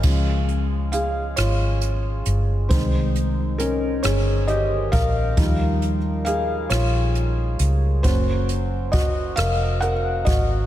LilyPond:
<<
  \new Staff \with { instrumentName = "Felt piano" } { \time 6/8 \key des \lydian \tempo 4. = 45 <aes' f''>4 <aes' f''>8 <f' des''>4. | <ees' c''>4 <des' bes'>8 <aes' des''>8 <g' ees''>8 <bes' f''>8~ | <bes' f''>4 <aes' f''>8 <f' des''>4. | <ges' c''>4 <ges' ees''>8 <bes' f''>8 <bes' ges''>8 <ges' ees''>8 | }
  \new Staff \with { instrumentName = "Felt piano" } { \clef bass \time 6/8 \key des \lydian <f aes des'>2. | <ees aes c'>4. r4. | <f g ees'>8 r2 r8 | <ges bes des'>4. r4. | }
  \new Staff \with { instrumentName = "Fingered electric bass" } { \clef bass \time 6/8 \key des \lydian des,4. aes,,4 g,,8 | c,4. g,,4 bes,,8 | ees,4. bes,,4 des,8 | ges,,4. f,,4 aes,,8 | }
  \new DrumStaff \with { instrumentName = "Drums" } \drummode { \time 6/8 <cymc bd>8 hh8 hh8 <hh ss>8 hh8 hh8 | <hh bd>8 hh8 hh8 <hh ss>8 hh8 <hh bd>8 | <hh bd>8 hh8 hh8 <hh ss>8 hh8 hh8 | <hh bd>8 hh8 <hh bd>8 <hh ss>8 hh8 <hh bd>8 | }
>>